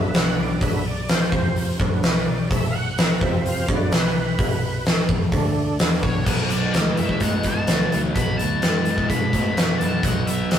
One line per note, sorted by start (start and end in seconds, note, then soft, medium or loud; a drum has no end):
0.00 0.13 F#2 medium
0.00 0.58 D3 soft
0.00 0.58 F#3 soft
0.00 0.58 B3 medium
0.00 0.14 E5 loud
0.14 0.37 B1 medium
0.14 0.38 F#5 medium
0.14 snare loud
0.14 open hi-hat medium
0.38 0.61 B1 medium
0.38 0.62 D5 medium
0.61 1.29 B1 medium
0.61 0.83 D3 soft
0.61 0.83 F#3 soft
0.61 0.84 B3 medium
0.61 0.85 E5 medium
0.61 kick loud
0.61 open hi-hat medium
0.86 1.09 D5 medium
1.09 1.56 C5 loud
1.09 snare loud
1.09 open hi-hat medium
1.30 1.77 F2 medium
1.30 1.77 C3 medium
1.30 1.78 F3 soft
1.30 1.78 C4 medium
1.30 kick medium
1.56 open hi-hat medium
1.79 2.03 F#2 medium
1.79 2.11 D3 medium
1.79 2.12 F#3 soft
1.79 2.12 B3 medium
1.79 kick loud
2.03 2.27 B1 medium
2.03 2.27 B4 medium
2.03 snare loud
2.03 open hi-hat medium
2.25 2.50 B1 medium
2.25 2.49 D5 medium
2.51 3.18 B1 medium
2.51 2.75 E5 medium
2.51 kick loud
2.51 open hi-hat medium
2.72 2.75 F5 medium
2.72 3.21 F#5 loud
2.98 snare loud
2.98 open hi-hat medium
3.20 3.66 F2 medium
3.20 3.66 C3 medium
3.20 3.66 F3 medium
3.20 3.67 C4 medium
3.20 3.45 E5 medium
3.20 kick loud
3.46 3.70 F5 loud
3.46 open hi-hat medium
3.69 3.91 F#2 medium
3.69 4.01 D3 medium
3.69 4.02 F#3 medium
3.69 kick loud
3.73 4.02 B3 medium
3.73 3.94 D5 medium
3.92 4.15 B1 medium
3.92 4.85 B4 medium
3.92 snare loud
3.92 open hi-hat medium
4.17 4.38 B1 medium
4.39 5.06 B1 medium
4.39 kick loud
4.39 open hi-hat medium
4.86 snare loud
4.86 open hi-hat medium
5.09 5.32 F2 medium
5.09 kick loud
5.32 5.77 D2 loud
5.32 5.77 D3 medium
5.32 5.78 A3 medium
5.32 5.78 D4 medium
5.32 kick medium
5.32 open hi-hat soft
5.78 6.03 E2 loud
5.78 6.24 F#3 medium
5.78 6.25 B3 medium
5.78 6.25 D4 medium
5.78 snare loud
5.78 open hi-hat medium
6.03 6.26 B1 loud
6.03 6.28 C#5 medium
6.03 kick loud
6.25 6.44 B1 medium
6.25 6.49 B2 medium
6.25 6.49 F#3 medium
6.25 6.51 F#5 loud
6.25 kick loud
6.25 crash loud
6.50 6.68 B1 medium
6.50 6.73 B2 medium
6.50 6.73 F#3 medium
6.50 6.72 D5 medium
6.50 closed hi-hat medium
6.73 6.91 D2 medium
6.73 6.97 B2 medium
6.73 6.97 G#3 medium
6.73 6.98 D5 medium
6.73 snare loud
6.73 closed hi-hat medium
6.97 7.15 F#2 medium
6.97 7.20 B2 medium
6.97 7.20 G#3 medium
6.97 7.23 E5 medium
6.97 closed hi-hat medium
7.09 kick medium
7.20 7.38 A2 medium
7.20 7.44 B2 medium
7.20 7.43 G#3 medium
7.20 7.46 F#5 medium
7.20 kick medium
7.20 closed hi-hat medium
7.43 7.61 G2 medium
7.43 7.66 B2 medium
7.43 7.67 G#3 medium
7.43 7.89 A5 medium
7.43 kick medium
7.43 closed hi-hat medium
7.67 7.86 D2 medium
7.67 7.89 B2 medium
7.67 7.90 F#3 medium
7.67 snare loud
7.67 closed hi-hat medium
7.90 8.10 D2 medium
7.90 8.13 B2 medium
7.90 8.14 F#3 medium
7.90 7.97 A5 medium
7.90 closed hi-hat medium
8.15 8.33 B1 medium
8.15 8.37 B2 medium
8.15 8.37 F#3 medium
8.15 8.37 B5 loud
8.15 kick loud
8.15 closed hi-hat medium
8.38 8.57 D2 medium
8.38 8.61 B2 medium
8.38 8.61 F#3 medium
8.38 9.09 A5 loud
8.38 closed hi-hat medium
8.62 8.97 F#2 medium
8.62 8.84 B2 medium
8.62 8.84 G#3 medium
8.62 snare medium
8.62 closed hi-hat medium
8.85 9.08 B2 medium
8.85 9.08 G#3 medium
8.85 closed hi-hat medium
8.98 kick medium
9.10 9.27 G2 medium
9.10 9.32 B2 medium
9.10 9.32 G#3 medium
9.10 9.76 B5 medium
9.10 kick medium
9.10 closed hi-hat medium
9.33 9.50 A2 medium
9.33 9.55 B2 medium
9.33 9.55 G#3 medium
9.33 kick medium
9.33 closed hi-hat medium
9.57 9.74 F#2 medium
9.57 9.79 B2 medium
9.57 9.79 F#3 medium
9.57 snare loud
9.57 closed hi-hat medium
9.79 9.97 F#2 medium
9.79 10.02 B2 medium
9.79 10.02 F#3 medium
9.79 10.04 A5 medium
9.79 closed hi-hat medium
10.03 10.20 B1 medium
10.03 10.26 B2 medium
10.03 10.26 F#3 medium
10.03 10.27 F#5 loud
10.03 kick loud
10.03 closed hi-hat medium
10.27 10.44 B1 medium
10.27 10.49 B2 medium
10.27 10.49 F#3 medium
10.27 10.49 E5 medium
10.27 closed hi-hat medium
10.51 10.59 D2 medium
10.51 10.59 B2 medium
10.51 10.59 G#3 loud
10.51 10.59 F#5 medium
10.51 snare loud
10.51 closed hi-hat medium